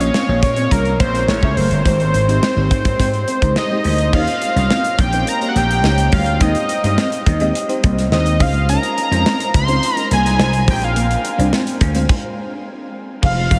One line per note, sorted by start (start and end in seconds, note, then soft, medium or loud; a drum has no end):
0.00 0.28 A#3 medium
0.00 0.28 C#4 medium
0.00 0.10 C#4 medium
0.00 0.28 F4 medium
0.00 0.29 G#4 medium
0.00 0.29 C#5 medium
0.00 0.40 C#5 medium
0.00 closed hi-hat soft
0.14 0.24 C4 medium
0.14 snare loud
0.28 0.40 A#1 medium
0.28 0.57 A#3 medium
0.28 0.57 C#4 medium
0.28 0.57 F4 medium
0.28 0.58 G#4 medium
0.28 0.58 C#5 medium
0.42 0.66 A#2 medium
0.42 0.73 C#5 loud
0.42 muted clean electric guitar stroke soft
0.42 kick medium
0.42 closed hi-hat medium
0.56 0.67 C4 medium
0.56 closed hi-hat soft
0.71 0.95 C2 medium
0.71 1.00 A#3 medium
0.71 1.00 C#4 medium
0.71 1.00 F4 medium
0.71 1.00 G#4 medium
0.71 1.00 A#4 medium
0.71 1.01 C#5 medium
0.71 kick medium
0.71 closed hi-hat medium
0.85 closed hi-hat soft
1.00 1.23 A#1 medium
1.00 1.10 A#3 medium
1.00 1.30 C5 loud
1.00 kick loud
1.00 snare soft
1.00 closed hi-hat medium
1.14 1.28 A#3 medium
1.14 1.27 C#4 medium
1.14 1.29 F4 medium
1.14 1.28 G#4 medium
1.14 1.28 C#5 medium
1.14 snare soft
1.14 closed hi-hat soft
1.28 1.40 A1 loud
1.28 1.40 A3 medium
1.28 1.40 C#4 medium
1.28 1.40 E4 medium
1.28 1.40 G#4 medium
1.28 1.58 C#5 medium
1.28 1.40 C#5 medium
1.28 snare medium
1.42 1.54 C#2 medium
1.42 1.72 A3 medium
1.42 1.72 C#4 medium
1.42 1.72 E4 medium
1.42 1.72 G#4 medium
1.42 1.72 E5 medium
1.42 kick medium
1.56 1.68 F#1 medium
1.56 1.67 A3 medium
1.56 3.56 C5 medium
1.56 open hi-hat medium
1.71 1.83 G1 medium
1.71 closed hi-hat soft
1.85 2.09 G#1 medium
1.85 1.95 G#3 medium
1.85 2.15 G#3 medium
1.85 2.15 C4 medium
1.85 2.15 D#4 medium
1.85 2.15 G4 medium
1.85 2.15 C5 medium
1.85 kick medium
1.85 closed hi-hat medium
2.00 closed hi-hat soft
2.14 2.38 G#1 medium
2.14 muted clean electric guitar stroke soft
2.14 closed hi-hat medium
2.28 2.47 G#3 medium
2.28 2.48 C4 medium
2.28 2.38 D#4 medium
2.28 2.48 D#4 medium
2.28 2.48 G4 medium
2.28 2.48 C5 medium
2.28 closed hi-hat soft
2.42 2.52 C4 medium
2.42 snare loud
2.56 2.68 G#1 medium
2.56 2.85 G#3 medium
2.56 2.86 C4 medium
2.56 2.86 D#4 medium
2.56 2.86 G4 medium
2.56 2.86 C5 medium
2.71 2.95 G#2 medium
2.71 muted clean electric guitar stroke soft
2.71 kick medium
2.71 closed hi-hat medium
2.85 2.95 G#3 medium
2.85 kick medium
2.85 closed hi-hat soft
2.99 3.23 G#2 medium
2.99 3.29 G#3 medium
2.99 3.29 C4 medium
2.99 3.29 D#4 medium
2.99 3.29 G4 medium
2.99 3.29 C5 medium
2.99 kick medium
2.99 closed hi-hat medium
3.14 closed hi-hat soft
3.28 3.38 C4 medium
3.28 closed hi-hat medium
3.42 3.54 C#2 medium
3.42 3.62 G#3 medium
3.42 3.62 C4 medium
3.42 3.62 D#4 medium
3.42 3.62 G4 medium
3.42 3.62 A#4 medium
3.42 kick medium
3.42 closed hi-hat soft
3.56 3.84 D#5 medium
3.56 snare loud
3.71 4.00 G#3 medium
3.71 4.00 C4 medium
3.71 4.00 D#4 medium
3.71 4.00 G4 medium
3.71 4.00 C5 medium
3.84 4.08 D2 medium
3.84 3.95 G#3 medium
3.84 4.13 D#5 medium
3.84 open hi-hat medium
3.98 closed hi-hat soft
4.13 4.25 D#2 medium
4.13 4.43 A#3 medium
4.13 4.43 C#4 medium
4.13 4.23 D#4 medium
4.13 4.43 D#4 medium
4.13 4.43 G4 medium
4.13 4.43 C#5 medium
4.13 5.02 F5 loud
4.13 kick medium
4.13 crash medium
4.27 closed hi-hat soft
4.42 muted clean electric guitar stroke soft
4.42 closed hi-hat medium
4.56 4.68 C2 medium
4.56 4.95 A#3 medium
4.56 4.66 C#4 medium
4.56 4.95 C#4 medium
4.56 4.95 D#4 medium
4.56 4.95 G4 medium
4.56 4.96 C#5 medium
4.56 closed hi-hat soft
4.70 4.80 C4 medium
4.70 snare loud
4.84 closed hi-hat medium
4.98 5.22 A#1 medium
4.98 5.30 G5 loud
4.98 muted clean electric guitar stroke soft
4.98 kick medium
4.98 closed hi-hat medium
5.13 5.32 A#3 medium
5.13 5.23 C4 medium
5.13 5.32 C#4 medium
5.13 5.32 D#4 medium
5.13 5.33 G4 medium
5.13 5.33 C5 medium
5.13 closed hi-hat soft
5.27 5.48 A#5 loud
5.27 closed hi-hat medium
5.41 5.70 A#3 medium
5.41 5.71 C#4 medium
5.41 5.71 D#4 medium
5.41 5.71 G4 medium
5.41 5.71 C#5 medium
5.41 closed hi-hat soft
5.49 5.59 F#5 medium
5.55 5.79 A#1 medium
5.55 5.65 A#3 medium
5.55 6.15 G5 loud
5.55 snare soft
5.55 closed hi-hat medium
5.71 closed hi-hat soft
5.84 6.08 C#2 medium
5.84 6.23 A#3 medium
5.84 6.23 C#4 medium
5.84 6.23 D#4 medium
5.84 6.23 G4 medium
5.84 6.23 C#5 medium
5.84 snare medium
5.98 closed hi-hat medium
6.12 6.36 D2 medium
6.12 6.22 G3 medium
6.12 6.44 F5 loud
6.12 kick medium
6.12 open hi-hat medium
6.26 closed hi-hat soft
6.41 6.53 D#2 loud
6.41 6.70 G#3 medium
6.41 6.51 G#3 medium
6.41 6.70 C4 medium
6.41 6.71 D#4 medium
6.41 6.71 G4 medium
6.41 6.71 C5 medium
6.41 7.56 D#5 medium
6.41 kick loud
6.41 closed hi-hat medium
6.55 closed hi-hat soft
6.69 muted clean electric guitar stroke soft
6.69 closed hi-hat medium
6.84 6.96 G2 medium
6.84 7.23 G#3 medium
6.84 7.23 C4 medium
6.84 6.94 D#4 medium
6.84 7.23 D#4 medium
6.84 7.23 G4 medium
6.84 7.23 C5 medium
6.84 closed hi-hat soft
6.98 7.08 C4 medium
6.98 snare loud
7.12 closed hi-hat medium
7.26 7.50 D#2 medium
7.26 muted clean electric guitar stroke soft
7.26 kick medium
7.26 closed hi-hat medium
7.40 7.60 G#3 medium
7.40 7.51 C4 medium
7.40 7.61 C4 medium
7.40 7.61 D#4 medium
7.40 7.61 G4 medium
7.40 7.61 D#5 loud
7.40 closed hi-hat medium
7.55 closed hi-hat medium
7.68 7.98 G#3 medium
7.68 7.98 C4 medium
7.68 7.98 D#4 medium
7.68 7.98 G4 medium
7.68 7.98 C5 medium
7.68 closed hi-hat soft
7.84 8.07 C2 medium
7.84 7.93 A#3 medium
7.84 kick loud
7.84 closed hi-hat medium
7.98 snare soft
7.98 closed hi-hat medium
8.12 8.40 D#2 loud
8.12 8.38 G#3 medium
8.12 8.40 C4 medium
8.12 8.38 D#4 medium
8.12 8.41 G4 medium
8.12 8.39 C5 medium
8.12 8.43 D#5 medium
8.12 snare medium
8.26 closed hi-hat medium
8.39 8.76 C#2 loud
8.39 8.97 G#3 medium
8.39 8.50 G#3 medium
8.39 8.97 C#4 medium
8.39 8.97 D#4 medium
8.39 8.97 F4 medium
8.39 8.97 C5 medium
8.39 8.69 F5 medium
8.39 kick loud
8.39 open hi-hat medium
8.54 closed hi-hat soft
8.69 8.79 C#4 medium
8.69 9.51 A#5 loud
8.69 closed hi-hat medium
8.83 closed hi-hat soft
8.98 muted clean electric guitar stroke soft
8.98 closed hi-hat medium
9.11 9.23 F2 medium
9.11 9.50 G#3 medium
9.11 9.21 C4 medium
9.11 9.50 C#4 medium
9.11 9.50 D#4 medium
9.11 9.50 F4 medium
9.11 9.51 C5 medium
9.11 closed hi-hat soft
9.26 9.36 C4 medium
9.26 snare loud
9.40 closed hi-hat medium
9.54 9.78 C#2 loud
9.54 9.96 C6 loud
9.54 muted clean electric guitar stroke soft
9.54 kick medium
9.54 closed hi-hat medium
9.68 9.87 G#3 medium
9.68 9.79 C4 medium
9.68 9.88 C#4 medium
9.68 9.88 D#4 medium
9.68 9.88 F4 medium
9.68 9.88 C5 medium
9.68 closed hi-hat medium
9.83 closed hi-hat medium
9.96 10.25 G#3 medium
9.96 10.26 C#4 medium
9.96 10.26 D#4 medium
9.96 10.26 F4 medium
9.96 10.26 C5 medium
9.96 10.08 A#5 loud
9.96 closed hi-hat soft
10.11 10.35 C2 medium
10.11 10.21 A#3 medium
10.11 10.65 G#5 loud
10.11 closed hi-hat medium
10.26 snare soft
10.26 closed hi-hat soft
10.38 10.63 C2 medium
10.38 10.66 G#3 medium
10.38 10.67 C#4 medium
10.38 10.68 D#4 medium
10.38 10.67 F4 medium
10.38 10.68 C5 medium
10.38 snare loud
10.53 closed hi-hat soft
10.67 11.14 A#1 loud
10.67 11.24 G#3 medium
10.67 10.78 G#3 medium
10.67 11.24 C4 medium
10.67 11.25 D4 medium
10.67 11.25 F4 medium
10.67 11.25 A#4 medium
10.67 10.86 G5 medium
10.67 kick medium
10.67 open hi-hat medium
10.82 11.40 F5 medium
10.82 closed hi-hat soft
10.96 11.06 A#3 medium
10.96 closed hi-hat medium
11.11 closed hi-hat soft
11.24 muted clean electric guitar stroke soft
11.24 closed hi-hat medium
11.37 11.50 C2 medium
11.37 11.77 G#3 medium
11.37 11.77 C4 medium
11.37 11.77 D4 medium
11.37 11.48 D4 medium
11.37 11.77 F4 medium
11.37 11.77 C5 medium
11.37 closed hi-hat medium
11.53 11.63 C4 medium
11.53 snare loud
11.67 closed hi-hat medium
11.81 12.04 D2 medium
11.81 muted clean electric guitar stroke soft
11.81 kick medium
11.81 closed hi-hat medium
11.95 12.09 G#3 medium
11.95 12.05 C4 medium
11.95 12.09 C4 medium
11.95 12.10 D4 medium
11.95 12.10 F4 medium
11.95 12.10 C5 loud
11.95 closed hi-hat medium
12.09 kick loud
12.09 crash medium
13.22 13.46 F1 medium
13.22 13.42 G3 medium
13.22 13.42 C4 medium
13.22 13.42 D#4 medium
13.22 13.32 F4 medium
13.22 13.42 F4 medium
13.22 13.42 G#4 medium
13.22 13.59 F5 loud
13.22 kick medium
13.22 crash medium
13.51 13.59 F1 loud
13.51 13.59 G3 medium
13.51 13.59 C4 medium
13.51 13.59 D#4 medium
13.51 13.59 F4 medium
13.51 13.59 G#4 medium
13.51 muted clean electric guitar stroke soft
13.51 kick medium
13.51 closed hi-hat medium